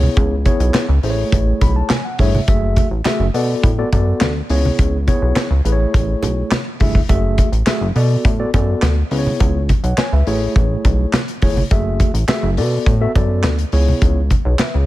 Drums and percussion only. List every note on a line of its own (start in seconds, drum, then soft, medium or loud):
0.03 high conga medium
0.17 kick loud
0.17 closed hi-hat medium
0.17 muted conga medium
0.45 kick medium
0.45 closed hi-hat medium
0.45 muted conga medium
0.60 closed hi-hat medium
0.74 snare loud
0.74 clap medium
0.74 closed hi-hat medium
0.74 high conga medium
1.03 open hi-hat medium
1.32 kick loud
1.32 closed hi-hat medium
1.32 muted conga soft
1.61 kick medium
1.61 closed hi-hat medium
1.61 muted conga medium
1.61 low conga medium
1.90 snare loud
1.90 clap medium
1.90 closed hi-hat medium
1.90 high conga medium
2.19 kick medium
2.19 open hi-hat medium
2.35 high conga medium
2.48 kick loud
2.48 closed hi-hat medium
2.48 muted conga medium
2.76 kick medium
2.76 closed hi-hat medium
2.76 muted conga medium
3.05 snare loud
3.05 clap medium
3.05 closed hi-hat medium
3.05 high conga medium
3.34 open hi-hat medium
3.63 kick loud
3.63 closed hi-hat medium
3.63 muted conga soft
3.93 kick loud
3.93 closed hi-hat medium
3.93 muted conga medium
3.93 low conga medium
4.21 snare loud
4.21 clap medium
4.21 closed hi-hat medium
4.21 high conga medium
4.50 open hi-hat medium
4.65 high conga medium
4.79 kick loud
4.79 closed hi-hat medium
4.79 muted conga medium
5.08 kick medium
5.08 closed hi-hat medium
5.08 muted conga medium
5.36 snare loud
5.36 clap medium
5.36 closed hi-hat medium
5.36 high conga medium
5.65 closed hi-hat medium
5.94 kick loud
5.94 closed hi-hat medium
5.94 muted conga soft
6.23 closed hi-hat medium
6.23 muted conga medium
6.23 low conga medium
6.51 snare loud
6.51 clap medium
6.51 closed hi-hat medium
6.51 high conga medium
6.80 kick medium
6.80 open hi-hat medium
6.80 high conga medium
6.95 kick loud
6.95 high conga medium
7.09 kick loud
7.09 closed hi-hat medium
7.09 muted conga medium
7.38 kick medium
7.38 closed hi-hat medium
7.38 muted conga medium
7.53 closed hi-hat medium
7.67 snare loud
7.67 clap medium
7.67 closed hi-hat medium
7.67 high conga medium
7.96 open hi-hat medium
8.25 kick loud
8.25 closed hi-hat medium
8.25 muted conga soft
8.54 kick loud
8.54 closed hi-hat medium
8.54 muted conga medium
8.54 low conga medium
8.82 snare loud
8.82 clap medium
8.82 closed hi-hat medium
8.82 high conga medium
9.11 open hi-hat medium
9.27 high conga medium
9.40 kick loud
9.40 closed hi-hat loud
9.40 muted conga medium
9.69 kick medium
9.69 closed hi-hat medium
9.69 muted conga medium
9.84 closed hi-hat medium
9.98 snare loud
9.98 clap medium
9.98 closed hi-hat medium
9.98 high conga medium
10.27 open hi-hat medium
10.56 kick loud
10.56 closed hi-hat medium
10.85 kick medium
10.85 closed hi-hat medium
10.85 muted conga medium
10.85 low conga medium
11.13 snare loud
11.13 clap medium
11.13 closed hi-hat medium
11.13 high conga medium
11.28 closed hi-hat medium
11.42 kick loud
11.42 open hi-hat medium
11.57 high conga medium
11.71 kick loud
11.71 closed hi-hat loud
11.71 muted conga medium
12.00 kick medium
12.00 closed hi-hat medium
12.00 muted conga medium
12.15 closed hi-hat medium
12.28 snare loud
12.28 clap medium
12.28 closed hi-hat medium
12.28 high conga medium
12.57 open hi-hat medium
12.86 kick loud
12.86 closed hi-hat medium
12.86 muted conga soft
13.15 kick medium
13.15 closed hi-hat medium
13.15 muted conga medium
13.15 low conga medium
13.43 snare loud
13.43 clap medium
13.43 closed hi-hat medium
13.43 high conga medium
13.59 closed hi-hat medium
13.72 open hi-hat medium
13.88 high conga medium
14.02 kick loud
14.02 closed hi-hat loud
14.02 muted conga medium
14.30 kick medium
14.30 closed hi-hat medium
14.30 muted conga medium
14.59 snare loud
14.59 clap medium
14.59 closed hi-hat medium
14.59 high conga medium